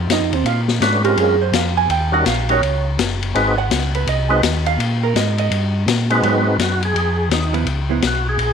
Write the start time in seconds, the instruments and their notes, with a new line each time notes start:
0.08 tonewheel organ F#2, hollow-body jazz guitar D#4, snare, hi-hat pedal, ride
0.12 hollow-body jazz guitar D#5
0.20 tonewheel organ F2
0.32 tonewheel organ D#2, hollow-body jazz guitar C4 C5, ride
0.44 tonewheel organ A#2, hollow-body jazz guitar F4 F5, ride
0.68 snare
0.81 tonewheel organ G#2 A3 C#4 D4 F#4 B4, snare, hi-hat pedal, ride
1.04 tonewheel organ G#3 C4 C#4 F4 A#4, hollow-body jazz guitar G4, ride
1.17 tonewheel organ F#2, hollow-body jazz guitar G#4, ride
1.42 hollow-body jazz guitar C5
1.52 tonewheel organ F2, hollow-body jazz guitar F5, snare, hi-hat pedal, ride
1.77 hollow-body jazz guitar G#5
1.88 tonewheel organ D#2, hollow-body jazz guitar G5, ride
2.12 tonewheel organ G3 C#4 D#4 F#4 A#4, hollow-body jazz guitar F#5
2.25 tonewheel organ A#1, hollow-body jazz guitar F5, snare, hi-hat pedal, ride
2.49 tonewheel organ G3 C#4 D#4 F#4 A#4, hollow-body jazz guitar C#5, ride
2.62 tonewheel organ C#2, ride
2.98 tonewheel organ F#1, snare, hi-hat pedal, ride
3.22 ride
3.35 tonewheel organ G#1 G#3 C4 D#4 F#4 B4, ride
3.58 hollow-body jazz guitar F#5
3.70 tonewheel organ C#2, snare, hi-hat pedal, ride
3.94 hollow-body jazz guitar B4, ride
4.07 tonewheel organ C2, hollow-body jazz guitar D#5, ride
4.29 tonewheel organ G#3 C4 D#4 F#4 B4, hollow-body jazz guitar D#5
4.43 tonewheel organ D#2, snare, hi-hat pedal, ride
4.66 hollow-body jazz guitar F5, ride
4.79 tonewheel organ A#2, ride
5.03 hollow-body jazz guitar A#4
5.14 tonewheel organ G#2, hollow-body jazz guitar D#5, snare, hi-hat pedal, ride
5.38 hollow-body jazz guitar D#5, ride
5.51 tonewheel organ G2, ride
5.86 tonewheel organ A#2, snare, hi-hat pedal, ride
6.10 tonewheel organ G#3 C4 D#4 F#4 B4, ride
6.23 tonewheel organ G#2, hollow-body jazz guitar F#3 B3 C4, ride
6.58 tonewheel organ F#2 F#4, snare, hi-hat pedal, ride
6.82 tonewheel organ G#4, ride
6.94 tonewheel organ F2, ride
7.30 tonewheel organ D#2, snare, hi-hat pedal, ride
7.34 tonewheel organ D#4
7.53 hollow-body jazz guitar F3 B3 E4, ride
7.65 tonewheel organ C#2, ride
7.89 hollow-body jazz guitar F3 B3 E4
8.02 tonewheel organ B1, snare, hi-hat pedal, ride
8.07 tonewheel organ F#4
8.29 tonewheel organ G#4
8.38 tonewheel organ A#1, ride